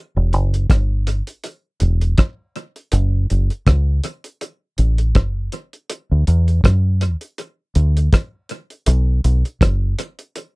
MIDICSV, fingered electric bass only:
0, 0, Header, 1, 2, 480
1, 0, Start_track
1, 0, Tempo, 742574
1, 1890, Time_signature, 4, 2, 24, 8
1, 6825, End_track
2, 0, Start_track
2, 0, Title_t, "Fingered electric bass"
2, 0, Program_c, 0, 33
2, 107, Note_on_c, 0, 28, 90
2, 216, Note_off_c, 0, 28, 0
2, 216, Note_on_c, 0, 30, 91
2, 424, Note_off_c, 0, 30, 0
2, 452, Note_on_c, 0, 31, 77
2, 779, Note_off_c, 0, 31, 0
2, 1172, Note_on_c, 0, 28, 83
2, 1382, Note_off_c, 0, 28, 0
2, 1894, Note_on_c, 0, 30, 107
2, 2103, Note_off_c, 0, 30, 0
2, 2140, Note_on_c, 0, 30, 91
2, 2253, Note_off_c, 0, 30, 0
2, 2373, Note_on_c, 0, 37, 81
2, 2582, Note_off_c, 0, 37, 0
2, 3094, Note_on_c, 0, 33, 78
2, 3332, Note_off_c, 0, 33, 0
2, 3332, Note_on_c, 0, 30, 85
2, 3542, Note_off_c, 0, 30, 0
2, 3953, Note_on_c, 0, 38, 75
2, 4042, Note_off_c, 0, 38, 0
2, 4058, Note_on_c, 0, 40, 83
2, 4265, Note_off_c, 0, 40, 0
2, 4293, Note_on_c, 0, 42, 70
2, 4620, Note_off_c, 0, 42, 0
2, 5015, Note_on_c, 0, 38, 88
2, 5223, Note_off_c, 0, 38, 0
2, 5736, Note_on_c, 0, 35, 113
2, 5944, Note_off_c, 0, 35, 0
2, 5976, Note_on_c, 0, 35, 94
2, 6091, Note_off_c, 0, 35, 0
2, 6212, Note_on_c, 0, 30, 88
2, 6422, Note_off_c, 0, 30, 0
2, 6825, End_track
0, 0, End_of_file